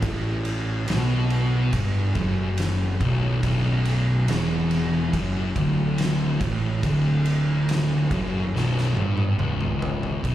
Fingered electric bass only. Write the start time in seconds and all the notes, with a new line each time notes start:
0.02 A1
0.88 B1
1.73 G1
2.16 F#1
3.01 B0
3.43 B0
4.28 E1
5.13 F#1
5.56 D1
6.41 A1
6.84 D1
8.11 F#1
8.54 B0
8.96 G1
9.39 C#1
10.24 B0